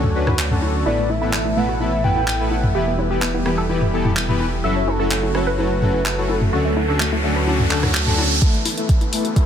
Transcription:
Already playing: detuned saw bass D2, analog synth pad D3 F#3 A3 F#4 C#5
0.03 mid tom
0.15 supersaw synth D3 C#4 D4 F#4 B4
0.27 cross-stick, mid tom, high conga
0.39 clap
0.51 supersaw synth D3 C#4 D4 F#4 A4, mid tom
0.62 high conga
0.86 detuned saw bass A1, supersaw synth A2 B3 E4 A4 B4, analog synth pad B2 E3 E4 A4, synth pluck E4, soft synth lead D5
0.98 synth pluck A3
1.10 synth pluck A3, soft synth lead E5, high conga
1.22 supersaw synth A2 B3 E4 A4 B4, synth pluck E4
1.33 synth pluck A3, clap
1.45 synth pluck A3, high conga
1.57 supersaw synth A2 B3 E4 A4 B4, synth pluck A3, soft synth lead F#5
1.69 synth pluck F#4
1.80 supersaw synth A2 B3 E4 A4 B4, soft synth lead E5, high conga
2.04 supersaw synth A2 B3 E4 A4 B4, soft synth lead G5, mid tom
2.16 high conga
2.28 clap
2.40 supersaw synth A2 B3 E4 A4 B4
2.51 soft synth lead F#5, high conga
2.63 mid tom
2.75 detuned saw bass E1, supersaw synth E3 B3 E4 G4 B4, analog synth pad G3 G4, synth pluck G4, soft synth lead E5
2.87 synth pluck B3
2.98 synth pluck B3, soft synth lead B4, high conga
3.11 supersaw synth E3 B3 E4 G4 B4, synth pluck G4
3.22 synth pluck B3, clap
3.34 synth pluck B3, high conga
3.46 supersaw synth E3 B3 E4 G4 B4, synth pluck B3, cross-stick
3.58 synth pluck A4
3.69 supersaw synth E3 B3 E4 G4 B4, high conga
3.82 mid tom
3.93 supersaw synth E3 B3 E4 G4 A4
4.05 mid tom, high conga
4.17 clap
4.29 supersaw synth E3 B3 E4 G4 B4, mid tom
4.40 high conga
4.64 detuned saw bass F#1, analog synth pad C#3 F#3 A3 F#4, supersaw synth F#3 C#4 E4 F#4 A4, synth pluck A4, soft synth lead E5, riser
4.76 synth pluck C#4
4.88 synth pluck C#4, soft synth lead A4, high conga
5.00 supersaw synth F#3 C#4 E4 F#4 A4, synth pluck A4
5.11 synth pluck C#4, clap
5.23 synth pluck C#4, high conga
5.35 supersaw synth F#3 C#4 E4 F#4 A4, synth pluck C#4, soft synth lead C#5, cross-stick
5.47 synth pluck B4
5.58 supersaw synth F#3 C#4 E4 F#4 A4, soft synth lead B4, high conga
5.82 supersaw synth F#3 C#4 E4 F#4 A4, mid tom
5.94 high conga
6.06 clap
6.18 supersaw synth F#3 C#4 E4 F#4 A4
6.29 soft synth lead A4, high conga
6.41 mid tom
6.53 detuned saw bass D2, analog synth pad D3 F#3 C#4 F#4, supersaw synth D3 C#4 D4 F#4 A4, synth pluck F#4
6.65 synth pluck A3
6.76 synth pluck A3, high conga
6.88 supersaw synth D3 C#4 D4 F#4 A4, synth pluck A4
7.00 synth pluck A3, clap
7.12 synth pluck A3, high conga
7.24 supersaw synth D3 C#4 D4 F#4 A4, synth pluck A3
7.36 synth pluck B4
7.47 supersaw synth D3 C#4 D4 F#4 A4, high conga
7.60 mid tom
7.71 supersaw synth D3 C#4 D4 F#4 A4, clap
7.83 cross-stick, mid tom, high conga
7.95 clap
8.07 supersaw synth D3 C#4 D4 F#4 A4, mid tom
8.18 high conga
8.42 analog synth pad E3 A3 B3 A4 B4, supersaw synth A3 E4 A4 B4 E5, synth pluck E4, kick, closed hi-hat, riser
8.54 synth pluck A3, closed hi-hat
8.65 synth pluck A3, open hi-hat, high conga
8.77 supersaw synth A3 E4 A4 B4 E5, synth pluck E4, closed hi-hat
8.89 synth pluck A3, kick, closed hi-hat
9.01 synth pluck A3, closed hi-hat, high conga
9.13 supersaw synth A3 E4 A4 B4 E5, synth pluck A3, open hi-hat
9.25 synth pluck F#4, closed hi-hat
9.36 supersaw synth A3 E4 A4 B4 E5, kick, closed hi-hat, high conga

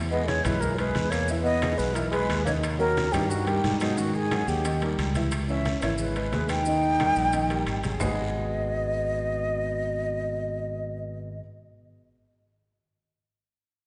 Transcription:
Already playing: fingered electric bass E2
0.11 grand piano G#3 G#4 B4, trombone B3, flute D#5, high conga, maracas
0.27 trombone G#3, flute C#5, high conga, high timbale, short guiro, maracas
0.44 fingered electric bass B1, grand piano E3 E4 E5, trombone G#3, flute B4, high conga, low conga, high timbale, short guiro, claves, maracas
0.61 trombone E3, grand piano G#3 G#4 B4, flute A#4, high conga, low conga, long guiro, maracas
0.77 trombone G#3, grand piano G#3 G#4 B4, flute B4, high conga, high timbale, maracas
0.95 fingered electric bass E2, high conga, high timbale, short guiro, maracas
1.10 grand piano G#3 G#4 B4, trombone A#3, flute C#5, high conga, high timbale, short guiro, claves, maracas
1.28 grand piano E3 E4 E5, high conga, long guiro, maracas
1.43 trombone B3, flute D#5, high conga, maracas
1.62 grand piano G#3 G#4 B4, high conga, high timbale, short guiro, claves, maracas
1.78 fingered electric bass B1, trombone G#3, flute B4, high conga, short guiro, maracas
1.94 trombone E3, grand piano E3 E4 E5, flute A#4, high conga, high timbale, long guiro, maracas
2.11 trombone G#3, grand piano G#3 G#4 B4, flute B4, high conga, high timbale, maracas
2.29 fingered electric bass D#2, high conga, high timbale, short guiro, claves, maracas
2.45 grand piano D#3 D#4 D#5, trombone A#3, flute C#5, high conga, high timbale, short guiro, maracas
2.63 high conga, high timbale, claves, maracas
2.78 trombone F#3, grand piano A#3 A#4 G5, flute A#4, high conga, maracas
2.97 high conga, high timbale, short guiro, maracas
3.12 fingered electric bass G2, grand piano D#3 D#4 D#5, trombone E3, flute G4, high conga, low conga, high timbale, short guiro, claves, maracas
3.29 trombone D#3, grand piano G3 G4 A#4, flute F#4, high conga, long guiro, maracas
3.46 trombone D#3, grand piano G3 G4 A#4, flute G4, high conga, high timbale, maracas
3.64 fingered electric bass G#2, high conga, high timbale, short guiro, maracas
3.80 trombone B2, grand piano F#3 F#4 G#4, flute D#4, high conga, high timbale, short guiro, claves, maracas
3.97 trombone D#3, grand piano D#3 D#4 D#5, flute F#4, high conga, long guiro, maracas
4.14 trombone D#3, flute G#4, high conga, maracas
4.31 grand piano F#3 F#4 G#4, high conga, high timbale, short guiro, claves, maracas
4.47 fingered electric bass D#2, trombone D#3, flute G4, high conga, short guiro, maracas
4.65 grand piano D#3 D#4 D#5, high conga, high timbale, long guiro, maracas
4.81 grand piano G3 G4 A#4, high conga, high timbale, maracas
4.98 fingered electric bass C#2, high conga, high timbale, short guiro, claves, maracas
5.15 grand piano E3 E4 E5, high conga, high timbale, short guiro, maracas
5.31 high conga, high timbale, claves, maracas
5.48 grand piano E3 E4 E5, trombone C#4, flute E5, high conga, maracas
5.65 high conga, high timbale, short guiro, maracas
5.82 fingered electric bass G#1, grand piano E3 E4 E5, trombone A#3, flute C#5, high conga, high timbale, short guiro, claves, maracas
5.98 trombone G#3, flute B4, high conga, long guiro, maracas
6.15 grand piano G#3 G#4 B4, high conga, high timbale, maracas
6.32 fingered electric bass D#2, grand piano G#3 G#4 B4, high conga, high timbale, low timbale, short guiro, maracas
6.49 trombone D#4, flute G5, high conga, high timbale, short guiro, claves, maracas
6.66 grand piano D#3 D#4 D#5, high conga, long guiro, maracas
6.82 high conga, maracas
6.99 grand piano G3 G4 A#4, high conga, high timbale, short guiro, claves, maracas
7.16 fingered electric bass A#1, high conga, short guiro, maracas
7.33 grand piano D#3 D#4 D#5, high conga, high timbale, long guiro, maracas
7.50 grand piano G3 G4 A#4, high conga, high timbale, maracas
7.67 fingered electric bass G#1, high conga, high timbale, short guiro, claves, maracas
7.84 grand piano F#3 F#4 G#4, high conga, high timbale, short guiro, maracas
8.00 fingered electric bass G#1, trombone B2, grand piano G#3 D#4 F#4 G#4 B4 D#5, flute D#5, low conga, low timbale, long guiro, claves, maracas

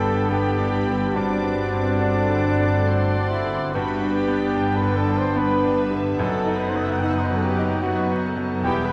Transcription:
Already playing: double bass section G1, grand piano G2 D3 B3, cello section G2, viola section B3 G4, french horn section B3 G4, bassoon B3, clarinet D4, violin section A4 B5, trumpet A4, cor anglais G5, flute A5
0.00 grand piano D4
0.28 french horn section B3 G4, grand piano B3, viola section E4 A4, trumpet G4, violin section G4 B5, flute G5
0.59 grand piano D4
0.73 viola section B4
0.88 grand piano D3
1.14 grand piano G2, french horn section C4 F#4, bassoon C4, trumpet D4, viola section D4 B4, violin section D4 D6, flute D5, cor anglais F#5
1.44 grand piano D4
1.59 viola section C4
1.73 grand piano C4
2.01 viola section B3 A4, grand piano D4, violin section D6
2.30 grand piano D3
2.45 viola section A3
2.60 grand piano D4
2.88 grand piano C4, viola section D5, violin section C6
3.17 grand piano D4
3.30 trumpet E4, violin section E4, flute E5
3.46 grand piano D3
3.73 double bass section G1, cello section G2, grand piano G2, bassoon B3, french horn section B3 D4, clarinet D4, viola section D4 B4, trumpet F#4, violin section F#4 B5, flute F#5, cor anglais G5
4.01 grand piano D4
4.15 trumpet G4, violin section G4, flute G5
4.28 grand piano B3
4.54 grand piano D4, viola section B4, violin section G5
4.76 violin section B4, trumpet B4, flute B5
4.81 grand piano D3
4.96 trumpet A4, violin section A4, flute A5
5.09 grand piano D4
5.16 violin section C5, trumpet C5, flute C6
5.36 grand piano B3, french horn section B3 D4, viola section G4, violin section B4 G5, trumpet B4, flute B5
5.64 grand piano D4
5.79 violin section E5
5.91 grand piano D3
6.18 double bass section F#1, grand piano F#2, cello section F#2, french horn section B3 D#4, viola section D#4 A4, clarinet D#4, violin section A4 F#5, cor anglais F#5, flute A5
6.22 trumpet A4
6.46 grand piano D#4
6.55 violin section B4, trumpet B4, flute B5
6.68 violin section C5, trumpet C5, flute C6
6.75 grand piano B3, violin section D#5, trumpet D#5, flute D#6
6.83 violin section E5, trumpet E5, flute E6
6.90 violin section F#5, trumpet F#5, flute F#6
6.96 violin section G5, trumpet G5, flute F#6 G6
7.02 grand piano D#4, viola section D#4 B4, violin section D#5 F#5, trumpet F#5, flute E6
7.09 violin section E5, trumpet E5
7.14 violin section D#5, trumpet D#5, flute D#6
7.19 trumpet C5, violin section C5, flute C6
7.27 grand piano F#3, violin section B4, trumpet B4, flute B5
7.34 trumpet A4, violin section A4, flute A5
7.41 trumpet G4, violin section G4, flute G5
7.58 grand piano D#4
7.81 french horn section B3 D#4, viola section B3 B4, trumpet F#4, violin section F#4 D#5, flute F#5
7.85 grand piano B3
8.11 grand piano D#4
8.26 viola section A4
8.37 grand piano F#3
8.63 double bass section E1, grand piano E2, cello section E2, french horn section G3 E4, bassoon B3, clarinet E4, violin section G4 E5, trumpet G4, flute G5, cor anglais G5
8.84 trumpet B4, violin section B4, flute B5

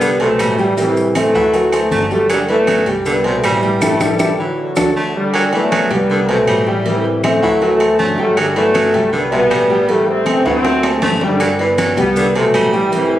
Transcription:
Already playing: upright bass C2, grand piano G3 G4 G5, trombone section G3 B3
0.01 baritone saxophone D3, cowbell, high conga, maracas
0.20 grand piano B2 B4 C5, baritone saxophone C3, trombone section F#3 A3, high conga, low agogo
0.39 upright bass A1, baritone saxophone G3, cowbell, high conga, low timbale, low agogo, claves, maracas
0.58 trombone section E3 G3, grand piano G3 G4 G5, cowbell, maracas
0.77 trombone section C3 E3, grand piano G3 G4 G5, cowbell, high conga, low agogo, maracas
0.97 high conga, maracas
1.15 trombone section E3 A3, grand piano C4 C5 E5, cowbell, high conga, low agogo, claves, maracas
1.34 upright bass D2, baritone saxophone E3, grand piano F#3 F#4 F#5, high conga, maracas
1.54 grand piano F#3 F#4 F#5, cowbell, high conga, low agogo, maracas
1.72 grand piano A3 A4 C5, high conga, low agogo, claves, maracas
1.91 upright bass G1, trombone section D3 F#3, baritone saxophone A3, cowbell, high conga, low agogo, maracas
2.10 trombone section F#3 A3, grand piano G3 G4 G5, cowbell, high conga, maracas
2.29 trombone section D3 G3, baritone saxophone F#3, cowbell, high conga, low agogo, claves, maracas
2.49 baritone saxophone E3, trombone section F#3 A3, grand piano B3 B4 D5, cowbell, high conga, low agogo
2.67 baritone saxophone F#3, cowbell, high conga, low agogo, claves, maracas
2.86 upright bass C2, grand piano G3 G4 G5, high conga, low agogo, maracas
3.06 baritone saxophone D3, trombone section G3 B3, cowbell, high conga, maracas
3.24 grand piano B2 B4 C5, baritone saxophone C3, high conga, low agogo
3.38 trombone section A3
3.43 upright bass A1, trombone section E3 G3, baritone saxophone G3, cowbell, high conga, low timbale, low agogo, claves, maracas
3.62 grand piano G3 G4 G5, cowbell, maracas
3.81 upright bass A1, trombone section E3 A3, grand piano E4 G4 A4, cowbell, high conga, high timbale, claves, maracas
4.00 upright bass A1, trombone section E3 G3, grand piano E4 G4 A4, cowbell, high conga, high timbale, claves, maracas
4.19 upright bass A1, grand piano E4 G4 A4, cowbell, high conga, high timbale, claves, maracas
4.39 trombone section D3 F#3, baritone saxophone E3
4.76 upright bass D2, grand piano D4 F#4 A4, cowbell, high conga, high timbale, claves, maracas
4.96 baritone saxophone A3
5.16 trombone section D3 G3
5.34 baritone saxophone F#3, cowbell, high conga, low agogo, claves
5.53 baritone saxophone E3, trombone section F#3 A3, grand piano B3 B4 D5, cowbell, high conga, low agogo
5.71 baritone saxophone F#3, cowbell, high conga, low agogo, claves
5.90 upright bass C2, grand piano G3 G4 G5, trombone section G3 B3, high conga, low agogo
6.10 baritone saxophone D3, cowbell, high conga
6.29 grand piano B2 B4 C5, baritone saxophone C3, trombone section F#3 A3, high conga, low agogo
6.47 upright bass A1, baritone saxophone G3, cowbell, high conga, low agogo, claves
6.67 trombone section E3 G3, grand piano G3 G4 G5, cowbell
6.86 trombone section C3 E3, grand piano G3 G4 G5, cowbell, high conga, low agogo
7.05 high conga
7.23 trombone section E3 A3, grand piano C4 C5 E5, cowbell, high conga, low agogo, claves
7.42 upright bass D2, baritone saxophone E3, grand piano F#3 F#4 F#5, high conga
7.61 grand piano F#3 F#4 F#5, cowbell, high conga, low agogo
7.80 grand piano A3 A4 C5, high conga, low agogo, claves
7.99 upright bass G1, trombone section D3 F#3, baritone saxophone A3, cowbell, high conga, low agogo
8.18 trombone section F#3 A3, grand piano G3 G4 G5, cowbell, high conga
8.37 trombone section D3 G3, baritone saxophone F#3, cowbell, high conga, low agogo, claves
8.55 baritone saxophone E3, trombone section F#3 A3, grand piano B3 B4 D5, cowbell, high conga, low agogo
8.74 baritone saxophone F#3, cowbell, high conga, low agogo, claves
8.93 upright bass C2, grand piano G3 G4 G5, high conga, low agogo
9.13 baritone saxophone D3, trombone section G3 B3, cowbell, high conga
9.32 grand piano B2 B4 E5, baritone saxophone C3, trombone section G3 B3, high conga, low agogo
9.50 upright bass A1, baritone saxophone G3, cowbell, high conga, low timbale, low agogo, claves
9.70 grand piano G3 G4 G5, cowbell
9.88 trombone section E3 A3, grand piano G3 G4 G5, cowbell, high conga, low agogo
10.08 trombone section A3 C4, high conga
10.26 grand piano C4 C5 E5, cowbell, high conga, low agogo, claves
10.45 upright bass D2, baritone saxophone E3, grand piano F#3 F#4 F#5, trombone section A3 C4, high bongo, high conga, high timbale
10.64 grand piano F#3 F#4 F#5, cowbell, high bongo, high conga, high timbale, low agogo
10.83 grand piano A3 A4 C5, high bongo, high conga, low timbale, low agogo, claves
11.02 upright bass G1, baritone saxophone A3, cowbell, low bongo, high conga, low timbale, low agogo
11.21 trombone section D3 G3, grand piano G3 G4 G5, cowbell, low bongo, high conga, low timbale
11.40 baritone saxophone F#3, cowbell, high conga, low agogo, claves, maracas
11.59 baritone saxophone E3, grand piano B3 B4 D5, cowbell, high conga, low agogo
11.78 baritone saxophone F#3, cowbell, high conga, low agogo, claves, maracas
11.97 upright bass C2, grand piano G3 G4 G5, trombone section G3 B3, low agogo, maracas
12.16 baritone saxophone D3, cowbell, high conga, maracas
12.36 grand piano B2 B4 C5, baritone saxophone C3, trombone section F#3 A3, high conga, low agogo
12.54 upright bass A1, baritone saxophone G3, cowbell, high conga, low timbale, low agogo, claves, maracas
12.72 trombone section E3 G3, grand piano G3 G4 G5, cowbell, maracas
12.92 trombone section C3 E3, grand piano G3 G4 G5, cowbell, high conga, low agogo, maracas
13.11 high conga

